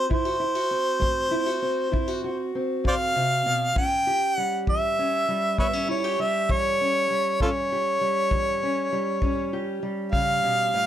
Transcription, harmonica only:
0.12 C5
2.88 C5 D5 F5
3.78 G5
4.36 F#5
4.70 E5
5.59 B4 C#5 E5
5.90 C#5
6.21 E5
6.52 C#5
7.42 F4 A4 C#5
10.12 F5

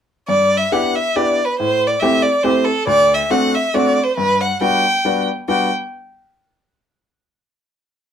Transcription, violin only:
0.29 D5
0.57 E5
0.72 F#5
0.95 E5
1.16 D5
1.45 B4
1.59 C5
1.88 D5
2.00 E5
2.22 D5
2.43 C5
2.65 A4
2.87 D5
3.14 E5
3.31 F#5
3.55 E5
3.75 D5
4.04 C5
4.17 B4
4.41 F#5
4.62 G5
5.49 G5

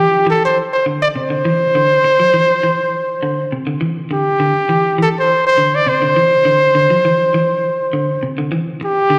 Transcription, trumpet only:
Already playing: G4
0.30 A4
0.45 C5
0.73 C5
1.02 D5
1.17 C5
4.13 G4
5.02 A4
5.19 C5
5.47 C5
5.75 D5
5.89 C5
8.85 G4

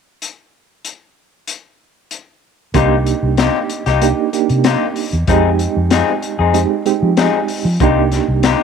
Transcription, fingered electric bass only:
2.74 C2
3.23 C2
3.86 C2
4.50 C3
5.13 E2
5.28 F2
5.77 F2
6.39 F2
7.02 F3
7.65 F3
7.81 C2
8.28 C2

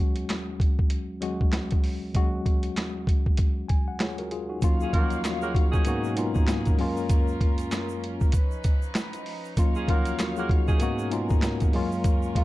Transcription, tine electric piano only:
Already playing: D#2 F#3 G#3 C#4 F#4
1.20 D#2 F#3 G#3 C#4 F#4
2.14 D#2 F#3 G#3 C#4 F#4
3.68 G#5
3.88 F#5
4.00 F4 G#4 C#5
4.18 F#4 A#4
4.31 F4 G#4
4.49 D#4 F#4
4.61 D#2 F#3 A#3 C#4 F4
4.92 D#2 F3 A#3 C#4 F4
5.00 F#3
5.24 F#4 A#4
5.43 F4 G#4
5.55 D#4 F#4
5.72 D#4
5.85 G#2 A#3 B3 C#4 D#4 F#4
6.16 G#2 A#3 B3 C#4 D#4 F4
6.78 F#2 G#3 A#3 C#4 F4
9.56 D#2 F#3 A#3 C#4 F4
9.87 D#2 F3 A#3 C#4 F4
9.94 F#3
10.19 F#4 A#4
10.38 F4 G#4
10.50 D#4 F#4
10.67 D#4
10.80 G#2 A#3 B3 C#4 D#4 F#4
11.10 G#2 A#3 B3 C#4 D#4 F4
11.73 F#2 G#3 A#3 C#4 F4
12.35 F#2 G#3 A#3 C#4 F4

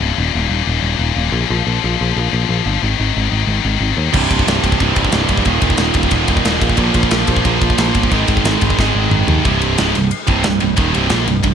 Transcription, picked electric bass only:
0.00 C#1
0.18 D#1
0.35 D#1
0.49 D#1
0.67 D#1
0.82 D#1
0.99 D#1
1.16 D#1
1.32 A#1
1.50 A#1
1.67 A#1
1.84 A#1
2.01 A#1
2.16 A#1
2.33 A#1
2.49 A#1
2.66 G1
2.83 G#1
3.00 G#1
3.17 G#1
3.32 G#1
3.47 G#1
3.65 G#1
3.80 G#1
3.97 D#2
4.15 C1
4.31 C1
4.47 C1
4.64 C1
4.80 C1
4.97 C1
5.13 C1
5.29 D1
5.46 D#1
5.62 D#1
5.78 D#1
5.96 D#1
6.12 D#1
6.28 D#1
6.45 D#1
6.62 A#1
6.78 A#1
6.94 A#1
7.12 A#1
7.28 A#1
7.45 A#1
7.62 A#1
7.79 A#1
7.96 G1
8.12 G#1
8.28 G#1
8.44 G#1
8.62 G#1
8.79 G#1
8.95 G#1
9.10 G#1
9.27 D#2
9.46 C1
9.79 C#1
9.96 C1
10.28 C1
10.47 C1
10.62 C1
10.78 D#1
10.95 C1
11.11 A#1
11.28 C1
11.44 C1

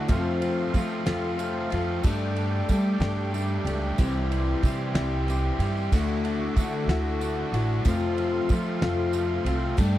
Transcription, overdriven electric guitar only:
0.07 F2 C3 F3 A3 C4 F4
0.41 F3 A3 C4 F4
0.73 F3 A3 C4 F4
1.06 F3 A3 C4 F4
1.38 F3 A3 C4 F4
1.71 F3 A3 C4 F4
2.03 G3 A3 D4
2.07 G4
2.36 A3 D4 G4
2.69 G3 A3 D4 G4
3.01 A3 D4 G4
3.33 G3 A3 D4 G4
3.66 A3 D4 G4
3.99 C3 E3 G3 C4 G4
4.30 G3 C4 G4
4.64 E3 G3 C4 G4
4.95 G3 C4 G4
5.27 E3 G3 C4 G4
5.60 G3 C4 G4
5.92 D3 A3 D4 F#4
6.22 A3 D4 F#4
6.55 D3 A3 D4 F#4
6.88 A3 D4 F#4
7.20 D3 A3 D4 F#4
7.52 A3 D4 F#4
7.85 F2 C3 F3 A3 C4 F4
8.17 F3 A3 C4 F4
8.50 F3 A3 C4 F4
8.82 F3 A3 C4 F4
9.12 F3 A3 C4 F4
9.45 F3 A3 C4 F4
9.77 G3 A3 D4 G4

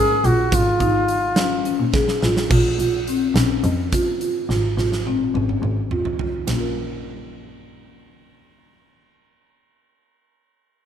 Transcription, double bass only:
Already playing: G#2
0.24 A#1
0.52 G#1
0.80 G#1
1.80 A#2
2.23 A1
2.51 A#1
2.79 A#1
3.35 A#1
3.64 F2
4.49 G#1
4.78 G#1
5.35 G#1
5.63 G#1
6.47 A#1

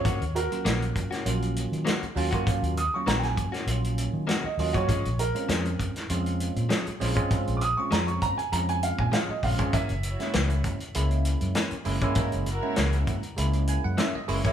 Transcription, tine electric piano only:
0.51 F#3 A#3 C#4 F4
1.25 F#3 A#3 C#4 F4
2.16 F#3 A#3 C#4 F4
2.34 F#3 A#3 C#4 F4
2.95 F#3 A#3 C#4 F4
3.69 F#3 A#3 C#4 F4
4.59 F#3 A#3 C#4 F4
4.75 F#3 A#3 C#4 F4
5.34 G#3 C4 C#4 F4
6.10 G#3 C4 C#4 F4
7.00 G#3 C4 C#4 F4
7.16 G#3 C4 C#4 F4
7.78 G#3 C4 C#4 F4
8.52 G#3 C4 C#4 F4
9.43 G#3 C4 C#4 F4
9.58 G#3 C4 C#4 F4
10.19 G#3 A#3 C#4 E4
10.95 G#3 A#3 C#4 E4
11.85 G#3 A#3 C#4 E4
12.02 G#3 A#3 C#4 E4
12.63 G#3 A#3 C#4 E4
13.37 G#3 A#3 C#4 E4
13.69 G#5
13.84 F#5
13.99 E5
14.15 D#5
14.28 G#3 A#3 C#4 E4 C#5
14.45 G#3 A#3 C#4 E4

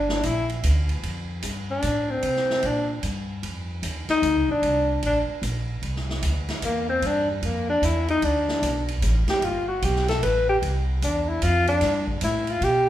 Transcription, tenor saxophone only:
Already playing: D4
0.25 E4
1.71 D4
2.10 C4
2.66 D4
4.10 D#4
4.51 D4
5.06 D4
6.65 A#3
6.90 C4
7.06 D4
7.31 G3
7.44 A#3
7.70 D4
7.85 E4
8.10 D#4
8.24 D4
9.30 G4
9.44 F4
9.68 F#4
9.84 G4
10.09 A4
10.23 B4
10.49 G4
11.04 D4
11.29 E4
11.44 F4
11.68 D4
12.24 E4
12.51 F4
12.64 G4

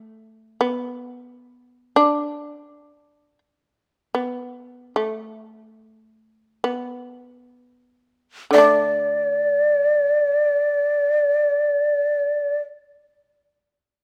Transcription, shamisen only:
Already playing: A3
0.61 B3
1.96 D4
4.15 B3
4.96 A3
6.64 B3
8.51 D3 A3
8.58 D4

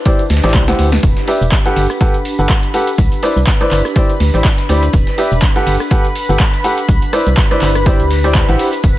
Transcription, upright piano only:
0.06 E4 G4 C5 D5
0.44 E4 G4 C5 D5
0.68 E4 G4 C5 F#5
1.28 G4 B4 D5 E5
1.66 G4 A4 B4 F#5
2.01 G4 A4 B4 F#5
2.39 G4 A4 B4 F#5
2.74 G4 A4 B4 F#5
3.23 E4 B4 C5 D5
3.61 E4 B4 C5 D5
3.96 E4 G4 C5 D5
4.34 E4 G4 C5 D5
4.69 E4 G4 C5 D5
5.18 G4 B4 D5 E5
5.56 G4 A4 B4 F#5
5.91 G4 A4 B4 F#5
6.29 G4 A4 B4 F#5
6.64 G4 A4 B4 F#5
7.13 E4 B4 C5 D5
7.51 E4 B4 C5 D5
7.86 E4 G4 C5 D5
8.24 E4 G4 C5 D5
8.48 E4 G4 C5 F#5

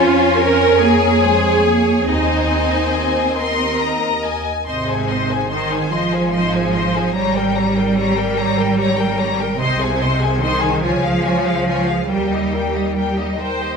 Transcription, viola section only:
Already playing: F4
0.38 A#4
0.81 G#4
2.10 D#4
4.69 C5
4.89 G#4
5.11 C5
5.32 G#4
5.54 C5
5.75 G#4
5.94 C5
6.15 G#4
6.36 C5
6.56 G#4
6.77 C5
6.97 G#4
7.16 G4
7.38 A#4
7.58 G4
7.78 A#4
7.98 G4
8.17 A#4
8.37 G4
8.57 A#4
8.78 G4
8.99 A#4
9.18 G4
9.39 A#4
9.61 C5
9.79 G#4
9.99 C5
10.20 G#4
10.41 C5
10.61 G#4
10.83 F4
11.04 G#4
11.25 F4
11.46 G#4
11.67 F4
11.89 G#4
12.11 G4
12.32 D#4
12.53 G4
12.75 D#4
12.96 G4
13.17 D#4
13.38 C5

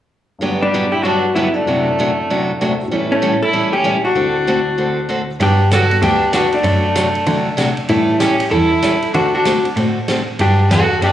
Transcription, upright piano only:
0.39 G2 G3 A3 B3
0.44 F#4
1.66 F#2 F#3 A3 C4 E4
2.45 F#5
2.52 E5
2.60 D5
2.68 C5
2.75 A4
2.83 F#4
2.88 A2 E3 B3 C#4
2.93 G3
3.72 A3 C#4 E4 A4
4.15 D2 D3 C4 E4 F#4
5.91 G3 B3 D4 F#4
7.89 A3 C#4 E4 G4
9.45 A3 C4 D4 F#4

